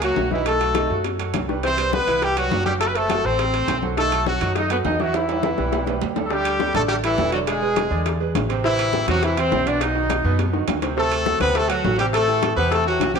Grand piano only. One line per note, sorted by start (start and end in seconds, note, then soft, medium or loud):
0.01 0.26 A#3 medium
0.01 0.26 A#4 medium
0.01 0.26 C#5 medium
0.31 0.55 D#3 medium
0.31 0.55 D#4 medium
0.31 0.55 D#5 medium
0.61 0.73 F#3 medium
0.61 0.73 F#4 medium
0.61 0.73 A4 medium
0.75 0.87 D#3 medium
0.75 0.88 D#4 medium
0.75 0.88 D#5 medium
0.90 1.14 F#3 medium
0.90 1.14 F#4 medium
0.90 1.14 A4 medium
1.19 1.43 F#3 medium
1.19 1.43 F#4 medium
1.19 1.43 A4 medium
1.48 1.60 G3 medium
1.48 1.61 G4 medium
1.48 1.61 B4 medium
1.64 1.75 E3 medium
1.64 1.75 E4 medium
1.64 1.76 E5 medium
1.77 2.02 G3 medium
1.77 2.02 G4 medium
1.77 2.02 B4 medium
2.07 2.19 E3 medium
2.07 2.19 E4 medium
2.07 2.19 E5 medium
2.22 2.34 G3 medium
2.22 2.34 G4 medium
2.22 2.34 B4 medium
2.37 2.61 G3 medium
2.37 2.61 G4 medium
2.37 2.61 B4 medium
2.66 2.90 F#3 medium
2.66 2.90 F#4 medium
2.66 2.90 F#5 medium
2.95 3.07 A3 medium
2.95 3.07 A4 medium
2.95 3.07 C5 medium
3.10 3.22 F#3 medium
3.10 3.22 F#4 medium
3.10 3.22 F#5 medium
3.25 3.49 A3 medium
3.25 3.49 A4 medium
3.25 3.49 C5 medium
3.54 3.78 A3 medium
3.54 3.78 A4 medium
3.54 3.78 C5 medium
3.83 3.95 F#3 medium
3.83 3.95 F#4 medium
3.83 3.95 A4 medium
3.98 4.09 D#3 medium
3.98 4.10 D#4 medium
3.98 4.10 D#5 medium
4.12 4.36 F#3 medium
4.12 4.36 F#4 medium
4.12 4.36 A4 medium
4.42 4.53 D#3 medium
4.42 4.54 D#4 medium
4.42 4.54 D#5 medium
4.56 4.68 F#3 medium
4.56 4.68 F#4 medium
4.56 4.68 A4 medium
4.70 4.94 F#3 medium
4.70 4.94 F#4 medium
4.70 4.95 A4 medium
5.00 5.24 E3 medium
5.00 5.24 E4 medium
5.00 5.24 E5 medium
5.28 5.40 G3 medium
5.28 5.41 G4 medium
5.28 5.41 B4 medium
5.43 5.55 E3 medium
5.43 5.55 E4 medium
5.43 5.56 E5 medium
5.58 5.82 G3 medium
5.58 5.82 G4 medium
5.58 5.82 B4 medium
5.87 6.11 G3 medium
5.87 6.11 G4 medium
5.87 6.11 B4 medium
6.16 6.28 G3 medium
6.16 6.28 G4 medium
6.16 6.29 A4 medium
6.31 6.55 D3 medium
6.31 6.55 D4 medium
6.31 6.55 D5 medium
6.60 6.72 G3 medium
6.60 6.72 G4 medium
6.60 6.72 A4 medium
6.74 6.98 D3 loud
6.74 6.98 D4 loud
6.74 6.99 D5 medium
7.04 7.16 G3 medium
7.04 7.16 G4 medium
7.04 7.16 A4 medium
7.18 7.30 G3 medium
7.18 7.31 G4 medium
7.18 7.31 A4 medium
7.33 7.57 D3 medium
7.33 7.57 D4 medium
7.33 7.57 D5 medium
7.62 7.86 G#3 medium
7.62 7.86 G#4 medium
7.62 7.86 B4 medium
7.91 8.15 D3 medium
7.91 8.15 D4 loud
7.91 8.15 D5 medium
8.20 8.44 G#3 medium
8.20 8.44 G#4 medium
8.20 8.44 B4 medium
8.49 8.61 C3 medium
8.49 8.62 C4 medium
8.49 8.62 C5 medium
8.64 8.88 C3 medium
8.64 8.88 C4 medium
8.64 8.88 C5 medium
8.93 9.05 E3 medium
8.93 9.05 E4 medium
8.93 9.05 G4 medium
9.08 9.31 C3 loud
9.08 9.32 C4 medium
9.08 9.32 C5 medium
9.37 9.49 E3 medium
9.37 9.49 E4 medium
9.37 9.49 G4 medium
9.51 9.63 E3 medium
9.51 9.63 E4 medium
9.51 9.64 G4 medium
9.66 9.90 B2 medium
9.66 9.90 B3 medium
9.66 9.90 B4 medium
9.95 10.19 D#3 medium
9.95 10.19 D#4 medium
9.95 10.19 F#4 medium
10.24 10.48 B2 medium
10.24 10.48 B3 medium
10.24 10.48 B4 medium
10.53 10.77 D#3 medium
10.53 10.77 D#4 medium
10.53 10.77 F#4 medium
10.82 10.94 C3 medium
10.82 10.94 C4 medium
10.82 10.94 C5 medium
10.97 11.21 C3 medium
10.97 11.21 C4 medium
10.97 11.21 C5 medium
11.25 11.37 F#3 medium
11.25 11.38 F#4 medium
11.25 11.38 A4 medium
11.40 11.64 C3 medium
11.40 11.64 C4 loud
11.40 11.64 C5 loud
11.70 11.81 F#3 medium
11.70 11.81 F#4 medium
11.70 11.82 A4 medium
11.84 11.96 F#3 medium
11.84 11.96 F#4 medium
11.84 11.96 A4 medium
11.98 12.22 C3 medium
11.98 12.22 C4 medium
11.98 12.22 C5 medium
12.28 12.51 E3 medium
12.28 12.51 E4 medium
12.28 12.52 G4 medium
12.57 12.81 C3 loud
12.57 12.81 C4 loud
12.57 12.81 C5 loud
12.86 13.10 E3 medium
12.86 13.10 E4 medium
12.86 13.10 G4 medium
13.15 13.19 C3 medium
13.15 13.19 C4 medium
13.15 13.19 C5 medium